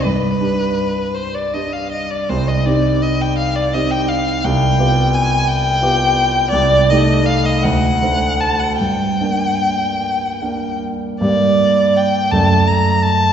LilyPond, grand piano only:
\new Staff \with { instrumentName = "Grand piano" } { \time 6/8 \key g \phrygian \tempo 4. = 55 g,8 <d' g'>4. <d' g'>4 | c,8 <c' ees' g'>4. <c' ees' g'>4 | c,8 <b f' g'>4. <b f' g'>4 | \key g \minor c,8 <a ees' g'>4 d,8 <a d' c''>4 |
g,8 <bes d' bes'>4. <bes d' bes'>4 | <g, bes g' d''>4. <fis, a a' d''>4. | }